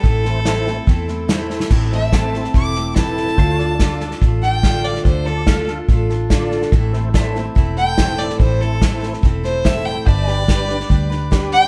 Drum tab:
CC |----------------|x---------------|----------------|----------------|
HH |----p-------p---|----p-------p---|----p-------p---|----p-------p---|
SD |o-o-o-o-o-o-o-oo|o-o-o-ooo-o-o-oo|o-o-o-ooo-o-o-oo|o-o-o-o-o-o-o-oo|
BD |o-------o-------|o---o---o---o---|o---o---o---o---|o---o---o---o---|

CC |----------------|----------------|----------------|
HH |----p-------p---|----p-------p---|----p-------p---|
SD |o-o-o-o-o-o-o-oo|o-o-o-ooo-o-o-o-|o-o-o-ooo-o-o-o-|
BD |o---o---o---o---|o---o---o---o---|o---o---o---o---|